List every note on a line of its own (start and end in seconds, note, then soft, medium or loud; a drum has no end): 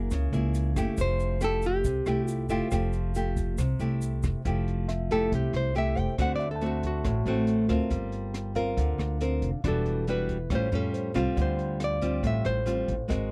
0.00 0.30 A#3 medium
0.00 0.30 E4 medium
0.00 0.30 G#4 medium
0.00 0.30 A#4 medium
0.11 0.31 C#2 medium
0.11 0.96 C#3 medium
0.11 kick medium
0.11 cross-stick soft
0.11 closed hi-hat soft
0.11 shaker medium
0.32 0.73 C#2 medium
0.32 0.73 A#3 medium
0.32 0.73 E4 medium
0.32 0.73 G#4 medium
0.32 closed hi-hat soft
0.32 shaker soft
0.54 closed hi-hat soft
0.54 shaker medium
0.76 0.86 F#1 medium
0.76 1.39 A3 medium
0.76 1.40 E4 medium
0.76 1.40 G4 medium
0.76 kick medium
0.76 cross-stick medium
0.76 closed hi-hat soft
0.76 shaker medium
0.97 1.81 F1 loud
0.97 1.83 F3 medium
0.97 1.44 C5 loud
0.97 kick medium
0.97 closed hi-hat soft
0.97 shaker medium
1.20 closed hi-hat soft
1.20 shaker soft
1.41 1.84 A3 soft
1.41 1.84 E4 medium
1.41 1.85 G4 medium
1.41 1.65 A4 medium
1.41 cross-stick medium
1.41 closed hi-hat soft
1.41 shaker soft
1.62 closed hi-hat soft
1.62 shaker medium
1.66 2.29 G4 medium
1.84 2.05 C2 medium
1.84 2.69 C3 medium
1.84 kick medium
1.84 closed hi-hat soft
1.84 shaker medium
2.06 2.47 C2 medium
2.06 2.46 A3 medium
2.06 2.46 E4 medium
2.06 2.47 G4 medium
2.06 cross-stick medium
2.06 closed hi-hat soft
2.06 shaker soft
2.28 2.51 F4 medium
2.28 closed hi-hat soft
2.28 shaker medium
2.49 2.59 F1 medium
2.49 2.68 A3 medium
2.49 2.68 E4 medium
2.49 3.98 F4 medium
2.49 2.68 G4 medium
2.49 closed hi-hat soft
2.49 shaker medium
2.71 3.54 F1 medium
2.71 3.56 F3 medium
2.71 3.11 A3 medium
2.71 3.12 G4 medium
2.71 kick medium
2.71 cross-stick medium
2.71 closed hi-hat soft
2.71 shaker medium
2.93 closed hi-hat soft
2.93 shaker soft
3.15 3.58 A3 soft
3.15 3.59 G4 medium
3.15 closed hi-hat soft
3.15 shaker soft
3.37 kick medium
3.37 closed hi-hat soft
3.37 shaker medium
3.58 3.78 C2 medium
3.58 4.42 C3 medium
3.58 kick medium
3.58 cross-stick medium
3.58 closed hi-hat soft
3.58 shaker medium
3.79 4.20 C2 medium
3.79 4.41 A3 medium
3.79 4.41 E4 medium
3.79 4.41 G4 medium
3.79 closed hi-hat soft
3.79 shaker soft
4.02 closed hi-hat soft
4.02 shaker medium
4.23 4.33 F1 medium
4.23 kick medium
4.23 cross-stick medium
4.23 closed hi-hat soft
4.23 shaker medium
4.45 5.27 F1 medium
4.45 5.29 F3 medium
4.45 4.88 A3 medium
4.45 4.88 E4 soft
4.45 4.88 G4 medium
4.45 kick medium
4.45 closed hi-hat soft
4.68 closed hi-hat soft
4.88 5.73 E5 soft
4.88 cross-stick medium
4.88 closed hi-hat soft
5.10 5.72 A3 medium
5.10 5.72 E4 medium
5.10 5.72 G4 medium
5.10 5.32 A4 medium
5.10 kick soft
5.10 closed hi-hat soft
5.32 5.52 C2 medium
5.32 6.16 C3 medium
5.32 5.54 G4 medium
5.32 kick medium
5.32 closed hi-hat soft
5.53 5.93 C2 medium
5.53 5.76 C5 medium
5.53 cross-stick medium
5.53 closed hi-hat soft
5.75 6.15 A3 medium
5.75 6.15 E4 medium
5.75 6.15 G4 medium
5.75 5.99 E5 medium
5.75 closed hi-hat soft
5.96 6.06 F1 medium
5.96 6.36 C5 soft
5.96 6.19 G5 loud
5.96 kick soft
5.96 closed hi-hat soft
6.18 7.00 D2 medium
6.18 7.02 D3 medium
6.18 6.46 A3 soft
6.18 6.46 C4 soft
6.18 6.46 F#4 medium
6.18 6.34 F#5 medium
6.18 kick medium
6.18 cross-stick medium
6.18 closed hi-hat soft
6.36 6.48 D5 medium
6.36 7.24 E5 medium
6.40 closed hi-hat soft
6.51 6.63 A4 medium
6.56 7.38 A5 soft
6.61 7.23 A3 medium
6.61 7.23 C4 medium
6.61 7.23 F#4 medium
6.61 closed hi-hat soft
6.66 6.85 F#4 medium
6.83 7.89 F#4 medium
6.83 kick soft
6.83 closed hi-hat soft
7.05 7.24 A1 medium
7.05 7.89 A2 medium
7.05 kick medium
7.05 cross-stick medium
7.05 closed hi-hat soft
7.26 7.66 A1 medium
7.26 7.66 A3 medium
7.26 7.66 C4 medium
7.26 7.66 F#4 medium
7.26 closed hi-hat soft
7.47 closed hi-hat soft
7.69 7.79 D2 medium
7.69 8.52 C4 medium
7.69 8.52 F4 medium
7.69 8.53 A#4 medium
7.69 kick soft
7.69 cross-stick medium
7.69 closed hi-hat soft
7.90 8.73 G1 medium
7.90 8.75 G3 medium
7.90 kick medium
7.90 closed hi-hat soft
8.12 closed hi-hat soft
8.34 cross-stick medium
8.34 closed hi-hat soft
8.55 9.17 C4 medium
8.55 9.17 F4 medium
8.55 9.17 A#4 medium
8.55 9.40 F5 soft
8.55 kick soft
8.55 closed hi-hat soft
8.77 8.97 D2 medium
8.77 9.61 D3 medium
8.77 kick medium
8.77 closed hi-hat soft
8.98 9.39 D2 medium
8.98 cross-stick medium
8.98 closed hi-hat soft
9.21 9.49 C4 medium
9.21 9.49 F4 medium
9.21 9.49 A#4 medium
9.21 closed hi-hat soft
9.42 9.52 F1 medium
9.42 kick soft
9.42 closed hi-hat soft
9.64 10.46 E1 medium
9.64 10.48 E3 medium
9.64 10.04 G3 medium
9.64 10.04 D4 medium
9.64 10.04 F#4 medium
9.64 kick medium
9.64 cross-stick medium
9.64 closed hi-hat soft
9.68 10.06 A4 medium
9.86 closed hi-hat soft
10.07 10.36 G3 medium
10.07 10.37 D4 medium
10.07 10.37 F#4 medium
10.07 10.49 B4 medium
10.07 closed hi-hat soft
10.29 kick soft
10.29 closed hi-hat soft
10.50 10.70 A1 medium
10.50 11.35 A2 medium
10.50 10.69 G3 soft
10.50 10.69 C#4 medium
10.50 10.69 F4 medium
10.50 kick medium
10.50 cross-stick medium
10.50 closed hi-hat soft
10.55 10.75 C5 medium
10.72 11.12 F2 medium
10.72 11.12 G3 medium
10.72 11.12 C#4 medium
10.72 11.12 F4 medium
10.72 11.38 A4 medium
10.72 closed hi-hat soft
10.94 11.54 C5 soft
10.94 closed hi-hat soft
11.14 11.25 C2 medium
11.14 11.97 G3 medium
11.14 11.98 C4 medium
11.14 11.98 F4 medium
11.14 kick soft
11.14 cross-stick medium
11.14 closed hi-hat soft
11.36 12.19 D2 loud
11.36 12.21 D3 medium
11.36 kick medium
11.36 closed hi-hat soft
11.42 11.79 C5 medium
11.59 closed hi-hat soft
11.80 12.65 F5 soft
11.80 cross-stick medium
11.80 closed hi-hat soft
11.84 12.22 D5 medium
12.02 12.63 G3 medium
12.02 12.63 C4 medium
12.02 12.63 F4 medium
12.02 kick soft
12.02 closed hi-hat soft
12.23 12.43 A1 medium
12.23 13.07 A2 medium
12.23 kick medium
12.23 closed hi-hat soft
12.27 12.46 E5 medium
12.45 12.85 A1 medium
12.45 13.06 C5 medium
12.45 cross-stick medium
12.45 closed hi-hat soft
12.66 12.94 G3 medium
12.66 12.94 C4 medium
12.66 12.94 F4 medium
12.66 closed hi-hat soft
12.88 12.98 A1 medium
12.88 kick soft
12.88 closed hi-hat soft
13.08 13.32 G#1 medium
13.08 13.32 G#3 medium
13.08 13.32 C4 medium
13.08 13.32 F#4 medium
13.08 13.32 A#4 medium
13.08 13.32 D#5 soft
13.08 kick medium
13.08 cross-stick medium
13.08 closed hi-hat soft